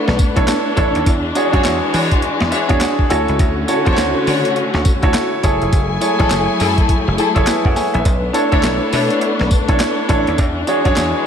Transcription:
Already playing: A3 B3 D4 E4 A4 C#5
0.08 B1, snare
0.19 kick, closed hi-hat, tambourine
0.36 B1 D4 E4 A4 C#5, kick, closed hi-hat
0.48 snare, clap, closed hi-hat, tambourine
0.76 A1 D4 E4 A4 C#5, kick, closed hi-hat, tambourine
0.95 D#2, closed hi-hat
1.06 E2 E3 G#3, kick, closed hi-hat, tambourine
1.35 D4 F#4 G#4 C#5, closed hi-hat, tambourine
1.52 F#2 D4 F#4 G#4 C#5, kick, closed hi-hat
1.65 E2, snare, clap, closed hi-hat, tambourine
1.93 E3 D4 F#4 G#4 C#5, open hi-hat, tambourine
2.11 kick, closed hi-hat
2.22 closed hi-hat
2.41 E2, snare
2.51 D4 F#4 G#4 C#5 E5, closed hi-hat, tambourine
2.69 E2 D4 F#4 G#4 C#5, kick, closed hi-hat
2.81 F#5, snare, clap, closed hi-hat, tambourine
2.99 kick
3.10 D2 D3 A3 C#4 E4 F#4 A4 C#5 G#5, closed hi-hat, tambourine
3.28 C#2, closed hi-hat
3.39 D2, kick, closed hi-hat, tambourine
3.68 E4 F#4 A4 C#5, closed hi-hat, tambourine
3.85 E2 D4 E4 F#4 A4 C5 C#5, kick, closed hi-hat
3.93 C#5
3.98 D2, snare, clap, closed hi-hat, tambourine
4.27 D3 D4 F#4 C#5, open hi-hat, tambourine
4.45 closed hi-hat
4.56 closed hi-hat
4.74 D2, snare
4.85 kick, closed hi-hat, tambourine
5.02 D2 E4 F#4 A4 C#5, kick, closed hi-hat
5.14 snare, clap, closed hi-hat, tambourine
5.43 F#1 F#3 A3 E4 G#4 A4 C#5 G#5, kick, closed hi-hat, tambourine
5.62 F1, closed hi-hat
5.73 F#1, kick, closed hi-hat, tambourine
6.01 E4 G#4 A4 C#5, closed hi-hat, tambourine
6.19 A1 E4 G#4 A4 C#5, kick, closed hi-hat
6.31 F#1, snare, clap, closed hi-hat, tambourine
6.60 F#2 E4 G#4 A4, open hi-hat, tambourine
6.78 kick, closed hi-hat
6.89 kick, closed hi-hat
7.08 F#1
7.18 E4 G#4 A4, closed hi-hat, tambourine
7.35 F#1 E4 G#4 A4 C#5, kick, closed hi-hat
7.47 B4 E5, snare, clap, closed hi-hat, tambourine
7.64 F#2 C#5 F#5, kick
7.76 C#5 G#5, snare, open hi-hat, tambourine
7.94 A#1 B4 E5, closed hi-hat
8.05 B1 A3 B3 D4, kick, closed hi-hat, tambourine, cowbell
8.33 D4 E4 A4 C#5, closed hi-hat, tambourine
8.52 D2 D4 E4 A4 C#5, kick, closed hi-hat
8.63 B1, snare, clap, closed hi-hat, tambourine, cowbell
8.92 B2 D4 E4 A4 C#5, open hi-hat, tambourine
9.10 closed hi-hat
9.21 closed hi-hat, cowbell
9.39 B1, snare
9.51 kick, closed hi-hat, tambourine
9.68 B1 D4 E4 A4 C#5, kick, closed hi-hat
9.80 snare, clap, closed hi-hat, tambourine, cowbell
10.09 A1 D4 E4 A4 C#5, kick, closed hi-hat, tambourine
10.27 D#2, closed hi-hat
10.38 E2 E3 G#3, kick, closed hi-hat, tambourine, cowbell
10.67 D4 F#4 G#4 C#5, closed hi-hat, tambourine
10.85 F#2 D4 F#4 G#4 C#5, kick, closed hi-hat
10.96 E2, snare, clap, closed hi-hat, tambourine, cowbell

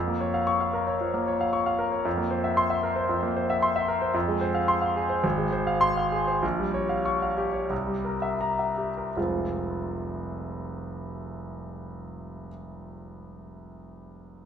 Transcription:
Already playing: F2
0.08 A#3
0.21 C#5
0.34 F5
0.47 C#6
0.60 F5
0.73 A#4
0.87 C#5
1.01 F3
1.14 A#3
1.27 C#5
1.41 F5
1.53 C#6
1.66 F5
1.79 A#4
1.92 C#5
2.05 F2
2.18 A#3
2.30 C5
2.44 E5
2.57 C6
2.70 E5
2.83 A#4
2.96 C5
3.09 F2
3.23 A#3
3.37 C5
3.50 E5
3.62 C6
3.76 E5
3.88 A#4
4.02 C5
4.14 F2
4.28 G#3
4.41 C5
4.55 F5
4.68 C6
4.82 F5
4.96 G#4
5.09 C5
5.24 G#1
5.38 G#3
5.52 C5
5.67 F5
5.81 C6
5.97 F5
6.12 G#4
6.27 C5
6.42 A#1
6.59 G3
6.74 C#5
6.89 F5
7.05 C#6
7.22 F5
7.37 G4
7.53 C#5
7.70 C2
7.87 G3
8.05 A#4
8.22 E5
8.41 A#5
8.59 E5
8.78 G4
8.97 A#4
9.17 F1 C2 F3 G#3 C4 F4

